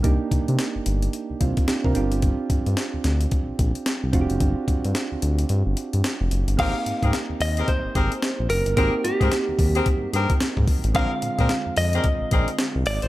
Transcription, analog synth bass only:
X:1
M:4/4
L:1/16
Q:"Swing 16ths" 1/4=110
K:Ablyd
V:1 name="Analog synth bass" clef=bass
C,, z C, C, z G,,, G,,,2 z C,, C,, z2 C, G,,,2- | G,,, z G,, G,, z D,, D,,2 z B,,, B,,, z2 C,, F,,, ^F,,, | G,,, z G,, G,, z D,, D,,2 G,, G,,, z G,, z F,,, ^F,,, G,,, | A,,, z A,, A,, z E,, E,,2 z A,,, A,,, z2 B,,, ^F,,, G,,, |
A,,, z A,, A,, z E,, E,,2 z G,, G,, z2 A,, z =A,,, | B,,, z B,, B,, z F,, F,,2 z B,,, B,,, z2 C,, A,,, =A,,, |]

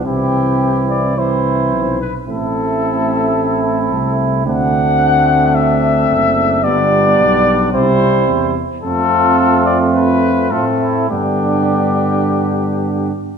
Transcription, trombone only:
X:1
M:4/4
L:1/8
Q:1/4=109
K:C
V:1 name="Trombone" clef=bass
E,4 E,3 z | A,8 | A,8 | G,4 G,3 z |
A,6 A,2 | D,6- D, z |]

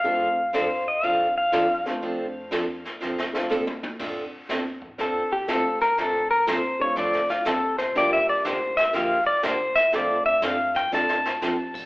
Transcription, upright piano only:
X:1
M:4/4
L:1/8
Q:"Swing" 1/4=121
K:F
V:1 name="Upright piano"
[A,CDFA] z6 [A,CDFc]- | [A,CDFc]2 z3 [A,CDFA] z2 | z6 [A,CDFA] z | z3 [A,CDFA]3 z2 |
[G,B,DFG]4- [G,B,DFG] z3 | [A,CDFA]4- [A,CDFA] z3 |]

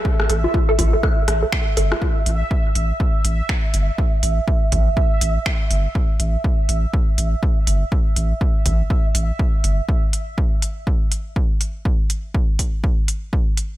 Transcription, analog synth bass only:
X:1
M:4/4
L:1/8
Q:"Swing 16ths" 1/4=122
K:C
V:1 name="Analog synth bass" clef=bass
z A,,, z A,,, z A,,, z G,,, | z A,,, z A,,, z A,,, z G,,, | z A,,, z A,,, z A,,, z G,,, | z A,,, z A,,, z A,,, z G,,, |
z A,,, z A,,, z A,,, z G,,, | z8 | z8 |]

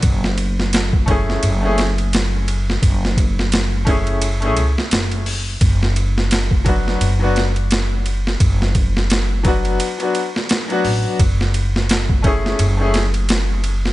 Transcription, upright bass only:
X:1
M:4/4
L:1/8
Q:"Swing 16ths" 1/4=86
K:F#m
V:1 name="Upright bass" clef=bass
F,,,4 F,,,4 | F,,,4- F,,, C,, F,,,2 | F,,,4 F,,,4 | F,,,4 z3 A,,, |
F,,,4 F,,,4 |]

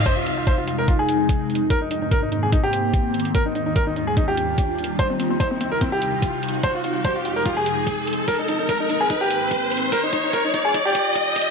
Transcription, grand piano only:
X:1
M:4/4
L:1/16
Q:"Swing 16ths" 1/4=146
K:Fm
V:1 name="Grand piano"
c F F F c F F B F A6 z | B E E E B E E A E G6 z | B E E E B E E A E G6 z | c C C C c C C B C G6 z |
c F F F c F F B F A6 z | B E E E B E E A E G6 z | B E E E B E E A E G6 z |]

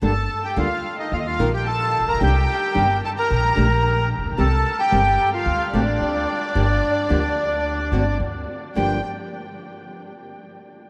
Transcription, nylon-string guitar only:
X:1
M:4/4
L:1/8
Q:1/4=110
K:Gm
V:1 name="Nylon-string guitar"
[D,G,B,DA] z [D,G,B,DA] z2 [E,B,EFB] z2 | [C,E,G,DG] z [C,E,G,DG] z2 [D,A,DG] z2 | [C,E,G,CG] z [C,E,G,CG] z2 [D,A,C^F] z2 | [D,F,B,DG] z [D,F,B,DG] z2 [D,A,C^F] z2 |
[G,,D,F,B,DG] z6 z |]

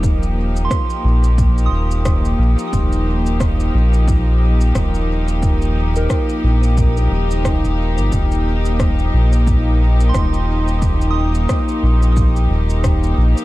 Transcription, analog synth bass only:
X:1
M:4/4
L:1/16
Q:"Swing 16ths" 1/4=89
K:Eb
V:1 name="Analog synth bass" clef=bass
E,,,4 z2 B,,,4 E,,,4 B,,, z | E,,,6 B,,,6 E,,,4- | E,,,4 z2 B,,,4 E,,,3 E,,,2 G,,, | E,,,6 B,,,6 E,,,4- |
E,,,4 z2 B,,,4 E,,,4 B,,, z |]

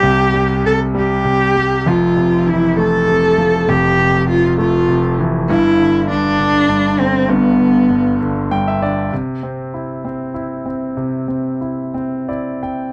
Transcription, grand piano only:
X:1
M:6/8
L:1/16
Q:3/8=66
K:C
V:1 name="Grand piano"
z12 | z12 | z12 | z12 |
z8 g e d2 | z12 | z8 d2 g2 |]
V:2 name="Grand piano" clef=bass
[C,,C,G,]2 G,2 C,2 G,2 C,2 G,2 | [F,,,F,,]2 C,2 E,2 A,2 C,2 F,2 | [F,,,F,,]2 C,4 A,2 C,2 E,2 | [G,,,G,,]2 D,2 G,,2 D,2 G,,2 D,2 |
[G,,,G,,]2 D,2 G,,2 D,2 G,,2 D,2 | C,2 C2 E2 C2 E2 C2 | C,2 C2 E2 C2 E2 C2 |]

